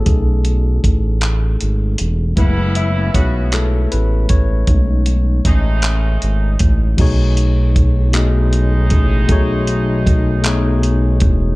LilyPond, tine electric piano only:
\new Staff \with { instrumentName = "Tine electric piano" } { \time 6/8 \key b \mixolydian \tempo 4. = 52 << { a'2 r4 | b'8 e''8 cis''8 a'8 b'8 cis''8~ | cis''2 r4 | <b, a dis' gis' cis''>4 r8 <b, a dis' gis' dis''>4 r8 |
<b, a dis' gis' cis''>4 r8 <b, a dis' gis' cis''>4 r8 | } \\ { <a cis' dis' gis'>2. | <gis a b e'>8 r4 <a b e' gis'>8 r4 | <gis a cis' dis'>2. | r2. |
r2. | } >> }